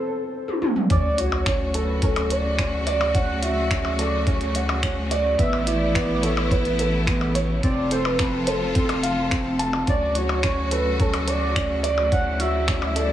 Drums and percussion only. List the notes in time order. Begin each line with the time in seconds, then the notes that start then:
0.48 high tom
0.62 mid tom
0.76 mid tom
0.90 kick, closed hi-hat
1.18 closed hi-hat
1.32 percussion blips
1.46 finger snap, kick, closed hi-hat
1.74 closed hi-hat
2.02 kick, closed hi-hat
2.16 closed hi-hat, percussion blips
2.30 closed hi-hat
2.58 finger snap, kick, closed hi-hat
2.87 closed hi-hat
3.01 percussion blips
3.15 kick, closed hi-hat
3.43 closed hi-hat
3.71 finger snap, kick, closed hi-hat
3.85 percussion blips
3.99 closed hi-hat
4.27 kick, closed hi-hat
4.41 closed hi-hat
4.55 closed hi-hat
4.69 percussion blips
4.83 finger snap, kick, closed hi-hat
5.11 closed hi-hat
5.39 kick, closed hi-hat
5.53 percussion blips
5.67 closed hi-hat
5.95 finger snap, kick, closed hi-hat
6.23 closed hi-hat
6.37 percussion blips
6.51 kick, closed hi-hat
6.65 closed hi-hat
6.79 closed hi-hat
7.07 finger snap, kick, closed hi-hat
7.21 percussion blips
7.35 closed hi-hat
7.63 kick, closed hi-hat
7.91 closed hi-hat
8.05 percussion blips
8.19 finger snap, kick, closed hi-hat
8.47 closed hi-hat
8.75 kick, closed hi-hat
8.89 closed hi-hat, percussion blips
9.04 closed hi-hat
9.31 finger snap, kick, closed hi-hat
9.59 closed hi-hat
9.73 percussion blips
9.87 kick, closed hi-hat
10.15 closed hi-hat
10.29 percussion blips
10.43 finger snap, kick, closed hi-hat
10.71 closed hi-hat
11.00 kick, closed hi-hat
11.14 closed hi-hat, percussion blips
11.28 closed hi-hat
11.56 finger snap, kick, closed hi-hat
11.84 closed hi-hat
11.98 percussion blips
12.12 kick, closed hi-hat
12.40 closed hi-hat
12.68 finger snap, kick, closed hi-hat
12.82 percussion blips
12.96 closed hi-hat